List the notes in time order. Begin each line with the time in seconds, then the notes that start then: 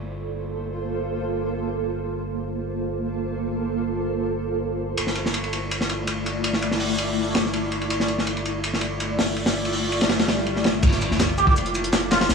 Already playing: G1 A#3 F4 A4 C5
2.05 A#3 F4 A4 C5
4.97 G1 A3 E4 F4 D5, ride
5.07 snare
5.15 ride
5.26 snare
5.34 ride
5.44 ride
5.53 ride
5.71 ride
5.81 snare
5.89 ride
6.07 ride
6.26 ride
6.44 ride
6.53 snare
6.62 ride
6.71 snare
6.80 open hi-hat
6.98 ride
7.35 snare, ride
7.45 snare
7.53 ride
7.72 ride
7.82 ride
7.90 A3 E4 F4 D5, ride
8.00 snare
8.08 ride
8.18 snare
8.27 ride
8.37 ride
8.45 ride
8.64 ride
8.74 snare
8.81 ride
9.00 ride
9.19 snare, open hi-hat
9.36 ride
9.46 snare, open hi-hat
9.65 ride
9.72 open hi-hat
9.92 ride
10.01 snare, ride
10.09 snare, ride, swell
10.19 snare, ride
10.28 snare, ride
10.38 snare
10.46 ride
10.56 snare
10.64 snare, ride
10.74 ride
10.83 G1, kick, crash, ride, sub drop, shaker
10.93 snare, closed hi-hat
11.01 snare, ride, shaker
11.11 G1, snare
11.20 snare, ride, shaker
11.29 ride
11.38 G4, ride, shaker
11.47 G4, kick, snare
11.56 F1, ride, shaker
11.66 closed hi-hat
11.74 ride, shaker
11.84 closed hi-hat
11.93 snare, ride, shaker
12.11 F4, snare, ride, shaker
12.21 F4, snare, ride
12.29 G1, snare, ride, shaker